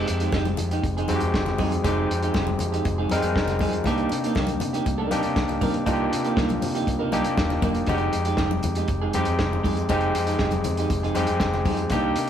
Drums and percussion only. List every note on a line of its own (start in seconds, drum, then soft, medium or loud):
0.08 closed hi-hat medium
0.20 closed hi-hat soft
0.32 kick loud
0.32 snare loud
0.32 muted conga soft
0.45 closed hi-hat soft
0.45 high conga medium
0.57 closed hi-hat medium
0.57 muted conga soft
0.57 low conga medium
0.71 closed hi-hat soft
0.84 kick loud
0.84 closed hi-hat medium
0.98 closed hi-hat soft
1.08 closed hi-hat medium
1.08 high conga medium
1.20 closed hi-hat soft
1.34 kick loud
1.34 snare loud
1.46 snare soft
1.46 low conga medium
1.58 kick medium
1.58 open hi-hat medium
1.58 muted conga soft
1.58 high conga medium
1.72 closed hi-hat soft
1.84 kick medium
1.84 closed hi-hat medium
1.84 muted conga soft
1.84 low conga medium
2.11 closed hi-hat medium
2.23 closed hi-hat soft
2.34 kick loud
2.34 snare loud
2.34 muted conga soft
2.47 high conga medium
2.59 closed hi-hat medium
2.59 muted conga soft
2.59 low conga medium
2.74 closed hi-hat soft
2.85 kick loud
2.85 closed hi-hat medium
2.85 muted conga soft
3.09 closed hi-hat medium
3.09 high conga medium
3.22 closed hi-hat medium
3.36 kick loud
3.36 snare loud
3.47 snare soft
3.47 closed hi-hat soft
3.47 low conga medium
3.59 kick loud
3.59 open hi-hat medium
3.59 high conga medium
3.73 closed hi-hat soft
3.84 kick medium
3.84 closed hi-hat medium
3.84 low conga medium
3.98 closed hi-hat soft
4.09 closed hi-hat medium
4.09 muted conga soft
4.24 closed hi-hat medium
4.35 kick loud
4.35 snare loud
4.35 muted conga soft
4.47 closed hi-hat soft
4.47 high conga medium
4.60 closed hi-hat medium
4.60 muted conga soft
4.60 low conga medium
4.74 closed hi-hat soft
4.86 kick loud
4.86 closed hi-hat medium
4.86 muted conga soft
5.11 closed hi-hat medium
5.11 muted conga soft
5.11 high conga medium
5.23 closed hi-hat soft
5.36 kick loud
5.36 snare loud
5.36 muted conga soft
5.48 closed hi-hat soft
5.48 low conga medium
5.61 kick medium
5.61 open hi-hat medium
5.61 muted conga soft
5.61 high conga medium
5.74 closed hi-hat soft
5.86 kick medium
5.86 closed hi-hat medium
5.86 low conga medium
6.13 closed hi-hat medium
6.24 closed hi-hat medium
6.37 kick loud
6.37 snare loud
6.49 closed hi-hat soft
6.49 high conga medium
6.62 open hi-hat medium
6.62 muted conga soft
6.62 low conga medium
6.75 closed hi-hat soft
6.87 kick loud
6.87 closed hi-hat medium
6.87 muted conga soft
7.12 closed hi-hat medium
7.12 high conga medium
7.24 closed hi-hat medium
7.37 kick loud
7.37 snare loud
7.37 muted conga soft
7.50 snare soft
7.50 low conga medium
7.62 kick loud
7.62 closed hi-hat medium
7.62 muted conga soft
7.62 high conga medium
7.75 closed hi-hat soft
7.86 kick medium
7.86 closed hi-hat medium
7.86 low conga medium
7.98 closed hi-hat soft
8.13 closed hi-hat medium
8.13 muted conga soft
8.25 closed hi-hat soft
8.37 kick loud
8.37 snare medium
8.37 muted conga soft
8.51 high conga medium
8.63 closed hi-hat medium
8.63 muted conga soft
8.63 low conga medium
8.75 closed hi-hat soft
8.88 kick loud
8.88 closed hi-hat medium
8.88 muted conga soft
9.13 closed hi-hat medium
9.13 high conga medium
9.25 closed hi-hat medium
9.39 kick loud
9.39 snare loud
9.53 low conga medium
9.64 kick loud
9.64 open hi-hat medium
9.64 high conga medium
9.77 closed hi-hat soft
9.89 kick medium
9.89 closed hi-hat medium
9.89 muted conga soft
9.89 low conga medium
10.00 closed hi-hat soft
10.15 closed hi-hat medium
10.15 muted conga soft
10.27 closed hi-hat soft
10.39 kick loud
10.39 snare medium
10.51 closed hi-hat soft
10.51 high conga medium
10.64 closed hi-hat medium
10.64 muted conga soft
10.64 low conga medium
10.77 closed hi-hat medium
10.90 kick loud
10.90 closed hi-hat medium
10.90 muted conga soft
11.04 closed hi-hat soft
11.15 closed hi-hat medium
11.15 muted conga soft
11.15 high conga medium
11.27 closed hi-hat medium
11.40 kick loud
11.40 snare loud
11.40 muted conga soft
11.53 snare soft
11.53 low conga medium
11.65 kick medium
11.65 open hi-hat medium
11.65 high conga medium
11.77 closed hi-hat medium
11.90 kick medium
11.90 closed hi-hat medium
11.90 low conga medium
12.16 closed hi-hat medium